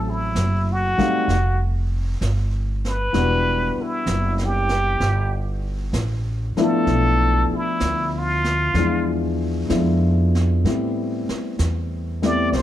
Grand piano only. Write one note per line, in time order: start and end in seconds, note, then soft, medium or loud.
0.00 1.31 F#3 medium
0.00 0.98 A3 soft
0.00 0.98 C4 soft
0.00 1.30 E4 soft
0.00 1.30 A4 medium
0.98 1.25 G3 medium
0.98 1.25 A3 medium
0.98 1.26 C4 soft
0.98 1.26 D#4 soft
0.98 1.26 F5 medium
3.13 3.70 E3 medium
3.13 3.70 G3 medium
3.13 3.70 B3 soft
3.13 3.71 D4 soft
3.13 3.71 F#4 medium
6.57 7.75 F3 medium
6.57 7.75 A3 medium
6.57 7.75 B3 medium
6.57 7.75 D4 medium
6.57 7.76 E4 medium
8.75 9.34 E3 medium
8.75 9.33 F3 medium
8.75 9.33 G#3 medium
8.75 9.33 B3 soft
8.75 9.34 D4 medium
9.68 10.64 F3 medium
9.68 10.65 G#3 soft
9.68 10.64 B3 soft
9.68 10.65 D4 medium
9.68 10.65 E4 medium
10.65 11.22 G3 soft
10.65 11.22 A3 soft
10.65 11.22 B3 soft
10.65 11.23 C4 soft
10.65 11.23 E4 medium
12.22 12.50 G3 medium
12.22 12.49 A3 soft
12.22 12.50 B3 medium
12.22 12.50 C4 soft
12.22 12.50 E4 medium